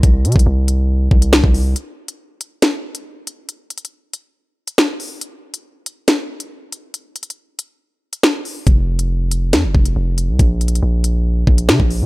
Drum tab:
HH |x-----x-x-x-------x--------------x--------o-----|x--------x--------x-----x--------x--------x-----|x-----x-x-x-------x--------------x--------o-----|x--------x--------x-----x--------x--------x-----|
SD |------------------------------------o-----------|------------------------o-----------------------|------------------------------------o-----------|------------------------o-----------------------|
BD |o--------o--------------------o--------o--------|------------------------------------------------|------------------------------------------------|------------------------------------------------|

HH |x-----x-x-x-------x--------------x--------o-----|x--------x--------x-----x--------x--------x-----|x-----x-x-x-------x--------------x--------o-----|
SD |------------------------------------o-----------|------------------------o-----------------------|------------------------------------o-----------|
BD |------------------------------------------------|o-----------------------------o-----------------|o-----------------------------o--------o--------|